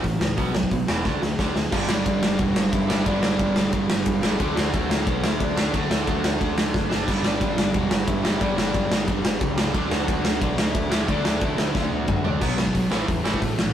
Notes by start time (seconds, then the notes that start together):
0.04 A1 A2 E3, kick, open hi-hat
0.21 C#2 A2 E3, snare
0.37 B1 B2 F#3 B3, kick, open hi-hat
0.54 B1 B2 F#3, snare
0.63 kick
0.71 B1 B2 F#3, kick, open hi-hat
0.87 E1 E2 B2 E3, snare
1.04 D2 D3 A3 D4, kick, snare
1.22 D2 D3 A3, snare
1.39 D2 D3 A3 D4, kick, snare
1.55 D2 D3 A3, snare
1.72 G1 G2 D3 G3, kick, crash
1.89 G1 D4 D5, snare
2.06 G1, kick, ride
2.23 G1, snare
2.39 E1 G2 D3 G3 F#4 F#5, kick, ride
2.56 G1, snare
2.71 G1 E4 E5, kick, ride
2.88 G2 D3 G3, snare
3.05 G1 G2 D3 G3 D4 D5, kick, ride
3.21 G1 D4 D5, snare
3.39 G1, kick, ride
3.56 G1, snare
3.72 G1 G2 D3 G3, kick, ride
3.90 G1, snare
4.06 G1, kick, ride
4.22 G2 D3 G3, snare
4.39 D2 D3 A3 D4, kick, ride
4.56 D2 F#4 F#5, snare
4.73 D2, kick, ride
4.89 D2, snare
5.06 B1 D3 A3 D4 F#4 F#5, kick, ride
5.23 D2 E4 E5, snare
5.40 D2 D4 D5, kick, ride
5.56 D3 A3 D4, snare
5.73 D2 D3 A3 D4 F#4 F#5, kick, ride
5.91 D2, snare
6.07 D2, kick, ride
6.24 D2, snare
6.39 D2 D3 A3 D4, kick, ride
6.57 D2, snare
6.74 F#1, kick, snare
6.89 D3 A3 D4, snare
7.06 G1 G2 D3 G3, kick, crash
7.23 G1 D4 D5, snare
7.41 G1, kick, ride
7.57 G1, snare
7.73 E1 G2 D3 G3 F#4 F#5, kick, ride
7.91 G1, snare
8.07 G1 E4 E5, kick, ride
8.23 G2 D3 G3, snare
8.40 G1 G2 D3 G3 D4 D5, kick, ride
8.57 G1 D4 D5, snare
8.74 G1, kick, ride
8.91 G1, snare
9.07 G1 G2 D3 G3, kick, ride
9.24 G1, snare
9.41 C#2, kick, ride
9.57 G2 D3 G3, snare
9.74 D2 D3 A3 D4, kick, ride
9.90 D2 F#4 F#5, snare
10.08 D2, kick, ride
10.24 D2, snare
10.40 B1 D3 A3 D4 F#4 F#5, kick, ride
10.58 D2 E4 E5, snare
10.75 D2, kick, ride
10.91 D3 A3 D4, snare
11.08 D2 D3 A3 D4 D5, kick, ride
11.25 D2, snare
11.41 D2 E4 E5, kick, ride
11.58 D2, snare
11.74 D2 D3 A3 D4 F#4 F#5, kick, snare
11.91 D2
12.08 D2, kick, mid tom
12.24 D3 A3 D4, floor tom
12.41 B1 B2 F#3 B3, kick, crash
12.57 B1 B2 F#3 B3, snare
12.67 kick
12.75 B1 B2 F#3 B3, kick, open hi-hat
12.91 A1 A2 E3 A3, snare
13.08 E2 A2 E3 A3, kick, open hi-hat
13.25 A1 A2 E3 A3, snare
13.34 kick
13.42 A1 A2 E3 A3, kick, open hi-hat
13.59 A#1 A2 E3 A3, snare